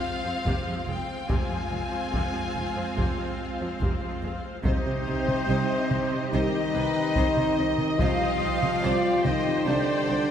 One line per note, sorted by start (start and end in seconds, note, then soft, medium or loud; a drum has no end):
0.00 1.26 G#3 medium
0.00 1.26 C4 medium
0.00 1.26 F4 medium
0.00 1.30 C5 medium
0.00 0.89 F5 medium
0.00 1.26 F5 medium
0.24 0.32 F2 soft
0.24 0.33 F3 soft
0.45 0.54 F1 medium
0.45 0.53 F2 medium
0.45 0.66 C3 medium
0.45 taiko medium
0.67 0.75 F2 soft
0.67 0.75 F3 medium
0.88 0.96 F1 soft
0.88 0.96 F2 soft
0.88 0.96 G#3 soft
0.88 1.30 G5 medium
1.29 1.38 F1 medium
1.29 1.37 F2 medium
1.29 1.49 C3 medium
1.29 4.62 G#3 medium
1.29 4.40 C4 medium
1.29 4.29 C4 medium
1.29 4.41 F4 medium
1.29 4.29 F4 medium
1.29 4.62 F4 medium
1.29 4.62 C5 medium
1.29 4.41 F5 medium
1.29 4.62 F5 medium
1.29 3.81 G#5 medium
1.29 taiko medium
1.50 1.58 F2 soft
1.50 1.59 F3 soft
1.71 1.80 F1 soft
1.71 1.79 F2 soft
1.71 1.79 G#3 soft
1.91 2.01 F2 soft
1.91 1.99 F3 soft
2.12 2.22 F1 medium
2.12 2.21 F2 medium
2.12 2.33 C3 medium
2.12 taiko medium
2.34 2.42 F2 soft
2.34 2.42 F3 soft
2.54 2.64 F1 soft
2.54 2.63 F2 soft
2.54 2.62 G#3 soft
2.76 2.84 F2 soft
2.76 2.84 F3 soft
2.96 3.06 F1 medium
2.96 3.04 F2 medium
2.96 3.17 C3 medium
2.96 taiko medium
3.17 3.25 F2 soft
3.17 3.27 F3 soft
3.60 3.68 F2 soft
3.60 3.69 F3 soft
3.81 3.89 F1 medium
3.81 3.89 F2 medium
3.81 4.01 C3 medium
3.81 taiko medium
4.02 4.10 F2 soft
4.02 4.11 F3 soft
4.22 4.31 F1 soft
4.22 4.30 F2 soft
4.22 4.31 G#3 soft
4.64 4.73 C2 medium
4.64 4.72 C3 medium
4.64 6.29 C3 medium
4.64 7.95 G3 medium
4.64 6.28 C4 medium
4.64 7.96 C4 medium
4.64 6.29 D#4 medium
4.64 7.96 G4 medium
4.64 4.84 C5 medium
4.64 6.29 C5 medium
4.64 6.35 C5 medium
4.64 7.96 D#5 medium
4.64 taiko loud
4.85 4.93 C3 soft
4.85 4.93 C5 medium
5.06 5.16 C2 soft
5.06 5.14 C3 soft
5.06 5.14 C5 medium
5.27 5.36 C3 soft
5.27 5.35 C5 soft
5.27 taiko mid medium
5.48 5.57 C2 medium
5.48 5.56 C3 medium
5.48 5.68 C5 medium
5.91 5.99 C2 medium
5.91 5.99 C3 soft
5.91 5.99 C5 medium
5.91 taiko mid medium
6.11 6.19 C3 soft
6.11 6.20 C5 soft
6.32 6.42 C2 medium
6.32 6.41 C3 medium
6.32 8.01 D#3 medium
6.32 7.99 D#4 loud
6.32 6.75 G4 medium
6.32 6.52 C5 medium
6.32 7.96 D#5 medium
6.32 7.99 D#5 medium
6.74 6.83 C2 medium
6.74 6.82 C3 medium
6.74 7.15 B4 medium
6.74 6.82 C5 medium
6.96 7.04 C3 medium
6.96 7.04 C5 medium
7.16 7.26 C2 medium
7.16 7.25 C3 medium
7.16 7.58 C5 medium
7.16 7.36 C5 medium
7.16 taiko medium
7.37 7.46 C3 medium
7.37 7.46 C5 medium
7.37 taiko mid soft
7.58 7.68 C2 medium
7.58 7.66 C3 medium
7.58 7.67 C5 medium
7.58 8.83 D#5 medium
7.78 7.87 C3 medium
7.78 7.89 C5 medium
7.78 taiko mid soft
7.98 8.09 C2 medium
7.98 8.08 C3 medium
7.98 9.24 F3 medium
7.98 10.31 G3 medium
7.98 9.22 F4 loud
7.98 10.31 G4 medium
7.98 10.31 C5 medium
7.98 8.20 C5 medium
7.98 9.22 F5 medium
7.98 9.26 F5 medium
7.98 10.31 G5 medium
7.98 taiko medium
8.22 8.30 C3 medium
8.22 8.31 C5 medium
8.41 8.50 C2 medium
8.41 8.49 C3 medium
8.41 8.51 C5 medium
8.63 8.71 C3 medium
8.63 8.72 C5 soft
8.63 taiko mid medium
8.83 8.92 C2 medium
8.83 8.91 C3 medium
8.83 9.03 C5 medium
8.83 9.25 D5 medium
9.24 9.33 C2 medium
9.24 9.33 C3 medium
9.24 9.67 D#3 medium
9.24 9.67 D#4 medium
9.24 10.31 C5 medium
9.24 9.33 C5 soft
9.24 9.66 D#5 medium
9.24 taiko mid medium
9.46 9.54 C3 medium
9.46 9.54 C5 soft
9.66 9.75 C2 medium
9.66 9.75 C3 medium
9.66 10.31 D3 medium
9.66 10.31 D4 medium
9.66 9.87 C5 medium
9.66 10.31 D5 medium
10.08 10.16 C2 medium
10.08 10.16 C3 medium
10.08 10.17 C5 medium